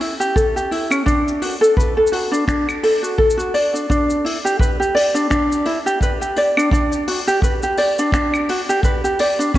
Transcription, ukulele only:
0.01 0.12 E4 medium
0.20 0.35 G4 medium
0.36 0.54 A4 medium
0.56 0.70 G4 medium
0.71 0.90 E4 medium
0.90 1.05 C#4 medium
1.06 1.40 D4 loud
1.42 1.54 F#4 medium
1.61 1.76 A4 medium
1.77 1.95 B4 medium
1.97 2.11 A4 medium
2.12 2.31 F#4 medium
2.32 2.46 D4 medium
2.47 2.66 D4 medium
2.83 3.01 A4 medium
3.03 3.17 F#4 medium
3.18 3.36 A4 medium
3.38 3.52 F#4 medium
3.54 3.73 D5 medium
3.74 3.88 D4 medium
3.90 4.24 D4 loud
4.25 4.36 E4 medium
4.45 4.59 G4 medium
4.60 4.78 B4 medium
4.80 4.94 G4 medium
4.95 5.13 D5 medium
5.15 5.29 D4 medium
5.30 5.64 D4 medium
5.66 5.77 E4 medium
5.86 6.00 G4 medium
6.02 6.20 B4 medium
6.21 6.35 G4 medium
6.37 6.55 D5 medium
6.57 6.71 D4 medium
6.72 7.06 D4 loud
7.08 7.19 F#4 medium
7.28 7.41 G4 medium
7.43 7.61 B4 medium
7.63 7.77 G4 medium
7.78 7.96 D5 medium
7.99 8.13 D4 loud
8.14 8.47 D4 medium
8.49 8.60 F#4 medium
8.69 8.83 G4 loud
8.84 9.02 B4 medium
9.04 9.18 G4 medium
9.20 9.37 D5 medium
9.39 9.54 D4 medium
9.55 9.58 C#4 loud

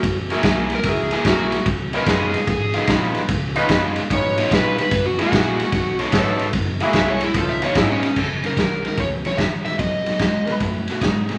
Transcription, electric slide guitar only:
0.00 0.17 F#4 medium
0.75 0.87 A#4 medium
0.89 1.27 G#4 medium
1.29 1.67 F#4 medium
1.96 2.08 A#4 loud
2.09 2.48 G#4 loud
2.50 2.89 G#4 loud
4.13 4.51 C#5 loud
4.54 4.78 B4 loud
4.80 5.05 B4 loud
5.06 5.19 F#4 medium
5.22 5.99 F#4 loud
6.96 7.08 E5 loud
7.10 7.22 C#5 medium
7.24 7.36 E4 medium
7.37 7.49 A4 medium
7.49 7.62 E5 medium
7.64 7.77 C#5 medium
7.78 7.90 E4 medium
7.91 8.17 C#4 loud
8.19 8.26 A4 medium
8.46 8.86 A#4 medium
8.87 9.00 A#4 medium
9.00 9.07 C#5 medium
9.27 9.39 C#5 medium
9.37 9.45 E5 medium
9.65 9.79 E5 loud
9.79 10.57 D#5 medium

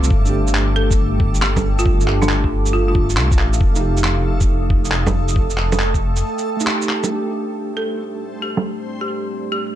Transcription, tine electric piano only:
0.00 0.12 F4 medium
0.21 1.95 A3 medium
0.26 1.97 D4 medium
0.26 1.99 G4 loud
1.97 3.58 A3 medium
1.97 3.60 D4 medium
2.05 3.62 G4 medium
3.72 5.46 A3 medium
3.72 5.48 D#4 medium
3.80 5.50 G4 loud
6.57 7.06 A3 medium
6.57 7.11 D#4 medium
6.65 7.13 G4 medium
7.07 9.75 A3 medium
7.11 9.75 D4 medium
7.15 9.75 G4 medium

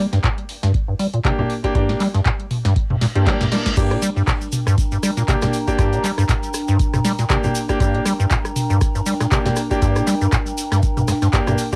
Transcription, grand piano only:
1.25 1.37 A#3 medium
1.25 1.37 D4 medium
1.25 1.37 G4 loud
1.39 1.51 A#3 medium
1.39 1.51 D4 medium
1.39 1.51 G4 loud
1.64 1.74 A#3 loud
1.64 1.74 D4 medium
1.64 1.74 G4 loud
1.75 1.98 A#3 medium
1.75 1.98 D4 medium
1.75 1.98 G4 medium
3.15 3.25 A#3 medium
3.15 3.25 D4 medium
3.15 3.25 G4 medium
3.26 3.42 A#3 medium
3.26 3.42 D4 medium
3.26 3.42 G4 loud
3.52 3.67 A#3 medium
3.52 3.67 D4 medium
3.52 3.67 A#4 medium
3.77 3.99 A#3 medium
3.77 3.99 D4 medium
3.77 3.99 G4 medium
5.28 5.40 A#3 medium
5.28 5.40 D4 medium
5.28 5.40 G4 loud
5.42 5.55 A#3 medium
5.42 5.55 D4 medium
5.42 5.55 G4 loud
5.68 5.77 A#3 loud
5.68 5.77 D4 medium
5.68 5.77 G4 loud
5.79 6.01 A#3 medium
5.79 6.01 D4 medium
5.79 6.01 G4 medium
7.30 7.42 A#3 medium
7.30 7.42 D4 medium
7.30 7.42 G4 loud
7.44 7.56 A#3 medium
7.44 7.56 D4 medium
7.44 7.56 G4 medium
7.69 7.79 A#3 loud
7.69 7.79 D4 medium
7.69 7.79 G4 loud
7.80 8.03 A#3 medium
7.80 8.03 D4 medium
7.80 8.03 G4 loud
9.31 9.44 A#3 medium
9.31 9.44 D4 medium
9.31 9.44 G4 loud
9.46 9.58 A#3 medium
9.46 9.58 D4 medium
9.46 9.58 G4 loud
9.71 9.80 A#3 loud
9.71 9.80 D4 medium
9.71 9.80 G4 loud
9.82 10.04 A#3 medium
9.82 10.04 D4 medium
9.82 10.04 G4 loud
11.33 11.45 A#3 medium
11.33 11.45 D4 medium
11.33 11.45 G4 medium
11.47 11.60 A#3 medium
11.47 11.60 D4 medium
11.47 11.60 G4 medium

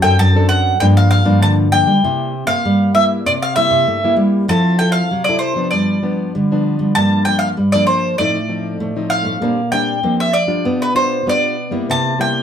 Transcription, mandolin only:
0.02 0.19 G5 medium
0.19 0.48 A5 medium
0.49 0.80 F#5 medium
0.80 0.85 G5 medium
0.97 1.09 F5 medium
1.11 1.40 F5 medium
1.43 1.51 A5 medium
1.72 2.47 G5 medium
2.47 2.94 F5 medium
2.95 3.03 E5 medium
3.26 3.31 D5 medium
3.42 3.55 F5 medium
3.56 4.14 E5 medium
4.49 4.78 A5 loud
4.79 4.92 G5 medium
4.92 5.22 F5 medium
5.24 5.38 D5 medium
5.39 5.69 C5 medium
5.71 6.60 D5 medium
6.95 7.25 A5 medium
7.25 7.38 G5 medium
7.39 7.48 F5 medium
7.72 7.86 D5 medium
7.87 8.16 C5 medium
8.18 9.14 D5 medium
9.10 9.71 F5 medium
9.72 10.15 G5 medium
10.20 10.36 E5 medium
10.33 10.82 D5 medium
10.82 10.95 B4 medium
10.96 11.28 C5 medium
11.29 11.71 D5 medium
11.91 12.20 A5 medium
12.21 12.43 G5 medium

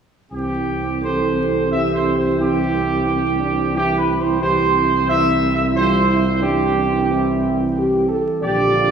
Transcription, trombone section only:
0.32 0.98 E3 medium
0.32 0.98 C4 soft
1.03 1.68 E3 medium
1.03 1.68 C4 medium
1.73 2.36 E3 medium
1.73 2.36 C4 medium
2.39 3.71 E3 medium
2.39 3.71 C4 medium
3.75 4.38 E3 medium
3.75 4.38 C4 medium
4.42 5.05 E3 medium
4.42 5.05 C4 medium
5.09 5.72 E3 medium
5.09 5.72 C4 medium
5.76 6.38 G3 medium
5.76 6.38 C4 medium
6.42 8.25 E3 medium
6.42 8.25 C4 medium
8.42 8.91 D3 medium
8.42 8.91 D4 medium

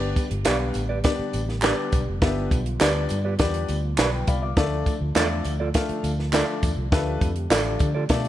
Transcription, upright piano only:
0.00 0.22 B3 medium
0.00 0.22 D4 medium
0.00 0.22 G4 medium
0.00 0.22 B4 medium
0.00 0.22 D5 loud
0.45 0.81 B3 medium
0.45 0.81 D4 medium
0.45 0.81 G4 medium
0.45 0.81 B4 medium
0.45 0.81 F5 medium
1.04 1.39 B3 medium
1.04 1.39 D4 medium
1.04 1.39 G4 medium
1.04 1.39 B4 medium
1.04 1.39 D5 loud
1.63 1.98 B3 loud
1.63 1.98 D4 medium
1.63 1.98 G4 medium
1.63 1.98 B4 medium
1.63 1.98 D5 loud
2.22 2.57 B3 loud
2.22 2.57 D4 medium
2.22 2.57 G4 medium
2.22 2.57 B4 medium
2.22 2.57 E5 loud
2.80 3.15 B3 medium
2.80 3.16 D4 medium
2.80 3.16 G4 medium
2.80 3.16 B4 medium
2.80 3.16 D5 loud
3.39 3.74 B3 medium
3.39 3.74 D4 medium
3.39 3.74 G4 medium
3.39 3.74 B4 medium
3.39 3.74 D5 loud
3.98 4.12 A5 medium
3.98 4.12 B5 medium
4.13 4.27 B4 medium
4.13 4.27 G5 medium
4.28 4.42 D5 medium
4.28 4.41 F5 medium
4.28 4.42 B5 medium
4.42 4.70 F5 medium
4.42 4.70 D6 medium
4.57 4.92 A3 loud
4.57 4.92 D4 medium
4.57 4.92 F4 medium
4.57 4.92 A4 medium
4.57 4.92 D5 loud
5.15 5.50 A3 medium
5.15 5.50 D4 medium
5.15 5.51 F4 medium
5.15 5.51 A4 medium
5.15 5.51 D5 loud
5.75 6.10 A3 loud
5.75 6.09 D4 medium
5.75 6.10 F4 medium
5.75 6.10 A4 medium
5.75 6.10 F5 loud
6.33 6.68 A3 medium
6.33 6.68 D4 medium
6.33 6.68 F4 medium
6.33 6.68 A4 medium
6.33 6.68 D5 loud
6.92 7.27 A3 medium
6.92 7.27 D4 medium
6.92 7.27 F4 medium
6.92 7.27 A4 medium
6.92 7.27 B4 loud
7.50 7.86 A3 medium
7.50 7.86 D4 medium
7.50 7.86 F4 medium
7.50 7.86 A4 medium
7.50 7.86 D5 loud
8.10 8.28 A3 medium
8.10 8.28 D4 medium
8.10 8.28 F4 medium
8.10 8.28 A4 medium
8.10 8.28 D5 loud

